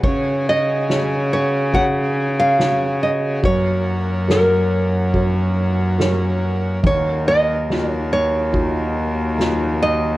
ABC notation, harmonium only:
X:1
M:4/4
L:1/8
Q:1/4=71
K:C#mix
V:1 name="Harmonium"
[C,FG]8 | F8 | [D,F,]8 |]
V:2 name="Harmonium"
C8 | A,8- | A,8 |]